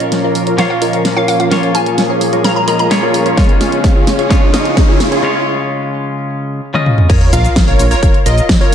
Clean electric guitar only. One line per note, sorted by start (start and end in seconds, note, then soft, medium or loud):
0.00 0.55 A#2 medium
0.00 0.55 A#3 medium
0.00 0.56 C#4 medium
0.00 0.56 F4 medium
0.00 0.56 C#5 medium
0.57 1.48 A#2 medium
0.57 1.48 A#3 medium
0.57 1.49 C#4 medium
0.57 1.49 F4 medium
0.57 1.49 C#5 loud
1.50 2.88 A#2 medium
1.50 2.88 A#3 medium
1.50 2.88 C#4 medium
1.50 2.88 F4 medium
1.50 2.89 C#5 loud
2.90 3.34 A#2 medium
2.90 3.35 A#3 medium
2.90 3.35 C#4 medium
2.90 3.35 F4 medium
2.90 3.35 C#5 loud
3.36 4.27 C#3 medium
3.36 4.27 G#3 medium
3.36 4.28 C#4 medium
3.36 4.28 F4 medium
3.36 4.28 C#5 medium
4.29 5.20 C#3 medium
4.29 5.20 G#3 medium
4.29 5.21 C#4 medium
4.29 5.21 F4 medium
4.29 5.21 C#5 loud
5.22 6.60 C#3 medium
5.22 6.60 G#3 medium
5.22 6.60 C#4 medium
5.22 6.61 F4 medium
5.22 6.61 C#5 loud
6.74 7.06 C#3 medium
6.74 7.07 G#3 medium
6.74 7.07 C#4 medium
6.74 7.07 F4 medium
6.74 7.07 D#5 medium